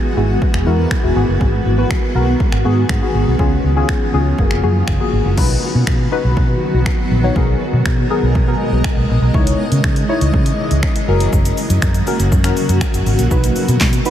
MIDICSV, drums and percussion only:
0, 0, Header, 1, 2, 480
1, 0, Start_track
1, 0, Key_signature, 5, "minor"
1, 0, Tempo, 495868
1, 1365, Time_signature, 4, 2, 24, 8
1, 13650, End_track
2, 0, Start_track
2, 0, Title_t, "Drums"
2, 405, Note_on_c, 9, 36, 100
2, 502, Note_off_c, 9, 36, 0
2, 524, Note_on_c, 9, 26, 59
2, 620, Note_off_c, 9, 26, 0
2, 881, Note_on_c, 9, 26, 105
2, 881, Note_on_c, 9, 36, 100
2, 978, Note_off_c, 9, 26, 0
2, 978, Note_off_c, 9, 36, 0
2, 1364, Note_on_c, 9, 36, 102
2, 1461, Note_off_c, 9, 36, 0
2, 1845, Note_on_c, 9, 26, 110
2, 1845, Note_on_c, 9, 36, 106
2, 1941, Note_off_c, 9, 36, 0
2, 1942, Note_off_c, 9, 26, 0
2, 2325, Note_on_c, 9, 36, 101
2, 2422, Note_off_c, 9, 36, 0
2, 2443, Note_on_c, 9, 26, 64
2, 2540, Note_off_c, 9, 26, 0
2, 2801, Note_on_c, 9, 26, 99
2, 2802, Note_on_c, 9, 36, 106
2, 2898, Note_off_c, 9, 26, 0
2, 2898, Note_off_c, 9, 36, 0
2, 3284, Note_on_c, 9, 36, 105
2, 3381, Note_off_c, 9, 36, 0
2, 3764, Note_on_c, 9, 26, 106
2, 3764, Note_on_c, 9, 36, 107
2, 3861, Note_off_c, 9, 26, 0
2, 3861, Note_off_c, 9, 36, 0
2, 4245, Note_on_c, 9, 36, 99
2, 4342, Note_off_c, 9, 36, 0
2, 4363, Note_on_c, 9, 26, 61
2, 4460, Note_off_c, 9, 26, 0
2, 4720, Note_on_c, 9, 26, 108
2, 4721, Note_on_c, 9, 36, 100
2, 4816, Note_off_c, 9, 26, 0
2, 4818, Note_off_c, 9, 36, 0
2, 5203, Note_on_c, 9, 36, 103
2, 5203, Note_on_c, 9, 49, 92
2, 5300, Note_off_c, 9, 36, 0
2, 5300, Note_off_c, 9, 49, 0
2, 5684, Note_on_c, 9, 26, 113
2, 5684, Note_on_c, 9, 36, 112
2, 5780, Note_off_c, 9, 26, 0
2, 5781, Note_off_c, 9, 36, 0
2, 6165, Note_on_c, 9, 36, 98
2, 6262, Note_off_c, 9, 36, 0
2, 6641, Note_on_c, 9, 26, 100
2, 6641, Note_on_c, 9, 36, 106
2, 6738, Note_off_c, 9, 26, 0
2, 6738, Note_off_c, 9, 36, 0
2, 7124, Note_on_c, 9, 36, 102
2, 7221, Note_off_c, 9, 36, 0
2, 7604, Note_on_c, 9, 26, 108
2, 7604, Note_on_c, 9, 36, 114
2, 7701, Note_off_c, 9, 26, 0
2, 7701, Note_off_c, 9, 36, 0
2, 8085, Note_on_c, 9, 36, 106
2, 8182, Note_off_c, 9, 36, 0
2, 8561, Note_on_c, 9, 26, 104
2, 8562, Note_on_c, 9, 36, 104
2, 8658, Note_off_c, 9, 26, 0
2, 8658, Note_off_c, 9, 36, 0
2, 9044, Note_on_c, 9, 36, 109
2, 9141, Note_off_c, 9, 36, 0
2, 9167, Note_on_c, 9, 42, 62
2, 9263, Note_off_c, 9, 42, 0
2, 9406, Note_on_c, 9, 42, 68
2, 9503, Note_off_c, 9, 42, 0
2, 9525, Note_on_c, 9, 26, 115
2, 9525, Note_on_c, 9, 36, 117
2, 9622, Note_off_c, 9, 26, 0
2, 9622, Note_off_c, 9, 36, 0
2, 9643, Note_on_c, 9, 42, 55
2, 9740, Note_off_c, 9, 42, 0
2, 9887, Note_on_c, 9, 42, 65
2, 9984, Note_off_c, 9, 42, 0
2, 10006, Note_on_c, 9, 36, 108
2, 10103, Note_off_c, 9, 36, 0
2, 10125, Note_on_c, 9, 42, 56
2, 10221, Note_off_c, 9, 42, 0
2, 10366, Note_on_c, 9, 42, 66
2, 10463, Note_off_c, 9, 42, 0
2, 10482, Note_on_c, 9, 26, 106
2, 10482, Note_on_c, 9, 36, 108
2, 10579, Note_off_c, 9, 26, 0
2, 10579, Note_off_c, 9, 36, 0
2, 10606, Note_on_c, 9, 42, 57
2, 10703, Note_off_c, 9, 42, 0
2, 10846, Note_on_c, 9, 42, 73
2, 10943, Note_off_c, 9, 42, 0
2, 10965, Note_on_c, 9, 36, 106
2, 10965, Note_on_c, 9, 82, 75
2, 11062, Note_off_c, 9, 36, 0
2, 11062, Note_off_c, 9, 82, 0
2, 11088, Note_on_c, 9, 42, 61
2, 11088, Note_on_c, 9, 82, 61
2, 11185, Note_off_c, 9, 42, 0
2, 11185, Note_off_c, 9, 82, 0
2, 11204, Note_on_c, 9, 46, 70
2, 11204, Note_on_c, 9, 82, 50
2, 11301, Note_off_c, 9, 46, 0
2, 11301, Note_off_c, 9, 82, 0
2, 11327, Note_on_c, 9, 42, 69
2, 11327, Note_on_c, 9, 82, 67
2, 11423, Note_off_c, 9, 42, 0
2, 11423, Note_off_c, 9, 82, 0
2, 11444, Note_on_c, 9, 26, 110
2, 11445, Note_on_c, 9, 36, 116
2, 11445, Note_on_c, 9, 82, 72
2, 11541, Note_off_c, 9, 26, 0
2, 11541, Note_off_c, 9, 82, 0
2, 11542, Note_off_c, 9, 36, 0
2, 11562, Note_on_c, 9, 42, 53
2, 11562, Note_on_c, 9, 82, 55
2, 11659, Note_off_c, 9, 42, 0
2, 11659, Note_off_c, 9, 82, 0
2, 11683, Note_on_c, 9, 46, 68
2, 11683, Note_on_c, 9, 82, 49
2, 11780, Note_off_c, 9, 46, 0
2, 11780, Note_off_c, 9, 82, 0
2, 11807, Note_on_c, 9, 42, 63
2, 11807, Note_on_c, 9, 82, 66
2, 11903, Note_off_c, 9, 42, 0
2, 11903, Note_off_c, 9, 82, 0
2, 11926, Note_on_c, 9, 36, 104
2, 11927, Note_on_c, 9, 82, 70
2, 12022, Note_off_c, 9, 36, 0
2, 12023, Note_off_c, 9, 82, 0
2, 12044, Note_on_c, 9, 26, 62
2, 12044, Note_on_c, 9, 42, 54
2, 12044, Note_on_c, 9, 82, 56
2, 12140, Note_off_c, 9, 26, 0
2, 12141, Note_off_c, 9, 42, 0
2, 12141, Note_off_c, 9, 82, 0
2, 12165, Note_on_c, 9, 46, 68
2, 12165, Note_on_c, 9, 82, 48
2, 12262, Note_off_c, 9, 46, 0
2, 12262, Note_off_c, 9, 82, 0
2, 12286, Note_on_c, 9, 42, 65
2, 12286, Note_on_c, 9, 82, 65
2, 12383, Note_off_c, 9, 42, 0
2, 12383, Note_off_c, 9, 82, 0
2, 12401, Note_on_c, 9, 26, 111
2, 12402, Note_on_c, 9, 36, 106
2, 12405, Note_on_c, 9, 82, 76
2, 12498, Note_off_c, 9, 26, 0
2, 12499, Note_off_c, 9, 36, 0
2, 12502, Note_off_c, 9, 82, 0
2, 12527, Note_on_c, 9, 42, 61
2, 12527, Note_on_c, 9, 82, 60
2, 12623, Note_off_c, 9, 42, 0
2, 12623, Note_off_c, 9, 82, 0
2, 12646, Note_on_c, 9, 46, 69
2, 12646, Note_on_c, 9, 82, 48
2, 12743, Note_off_c, 9, 46, 0
2, 12743, Note_off_c, 9, 82, 0
2, 12766, Note_on_c, 9, 42, 72
2, 12766, Note_on_c, 9, 82, 74
2, 12863, Note_off_c, 9, 42, 0
2, 12863, Note_off_c, 9, 82, 0
2, 12884, Note_on_c, 9, 82, 77
2, 12885, Note_on_c, 9, 36, 104
2, 12981, Note_off_c, 9, 36, 0
2, 12981, Note_off_c, 9, 82, 0
2, 13007, Note_on_c, 9, 42, 61
2, 13007, Note_on_c, 9, 82, 61
2, 13104, Note_off_c, 9, 42, 0
2, 13104, Note_off_c, 9, 82, 0
2, 13124, Note_on_c, 9, 46, 69
2, 13124, Note_on_c, 9, 82, 49
2, 13220, Note_off_c, 9, 46, 0
2, 13220, Note_off_c, 9, 82, 0
2, 13247, Note_on_c, 9, 42, 67
2, 13247, Note_on_c, 9, 82, 70
2, 13344, Note_off_c, 9, 42, 0
2, 13344, Note_off_c, 9, 82, 0
2, 13365, Note_on_c, 9, 36, 111
2, 13365, Note_on_c, 9, 38, 95
2, 13366, Note_on_c, 9, 39, 110
2, 13366, Note_on_c, 9, 82, 73
2, 13462, Note_off_c, 9, 36, 0
2, 13462, Note_off_c, 9, 38, 0
2, 13463, Note_off_c, 9, 39, 0
2, 13463, Note_off_c, 9, 82, 0
2, 13483, Note_on_c, 9, 42, 55
2, 13483, Note_on_c, 9, 82, 54
2, 13580, Note_off_c, 9, 42, 0
2, 13580, Note_off_c, 9, 82, 0
2, 13604, Note_on_c, 9, 46, 67
2, 13604, Note_on_c, 9, 82, 50
2, 13650, Note_off_c, 9, 46, 0
2, 13650, Note_off_c, 9, 82, 0
2, 13650, End_track
0, 0, End_of_file